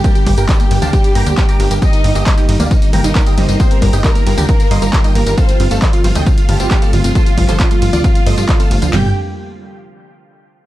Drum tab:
RD |--x---x---x---x-|--x---x---x---x-|--x---x---x---x-|--x---x---x---x-|
HH |xxoxxxoxxxoxxxox|xxoxxxoxxxoxxxox|xxoxxxoxxxoxxxox|xxoxxxoxxxoxxxox|
TB |xx-xxx-xxx-xxx-x|xx-xxx-xxx-xxx-x|xx-xxx-xxx-xxx-x|xx-xxx-xxx-xxx-x|
CP |----x-------x---|----x-------x---|----x-------x---|----x-------x---|
SD |----------------|----------------|----------------|----------------|
T2 |-------o--------|-------o--o---o-|-------o--------|-------o--o---o-|
FT |----------------|----------------|----------------|----------------|
BD |o-o-o---o---o---|o---o---o---o---|o-o-o---o---o---|o---o---o---o---|

RD |--x---x---x---x-|----------------|
HH |xxoxxxoxxxooxxox|----------------|
TB |xx-xxx-xxx-xxx-x|----------------|
CP |---xx-------x---|----------------|
SD |----------------|o---------------|
T2 |---o---o--------|----------------|
FT |----------------|o---------------|
BD |o-o-o---o---o---|----------------|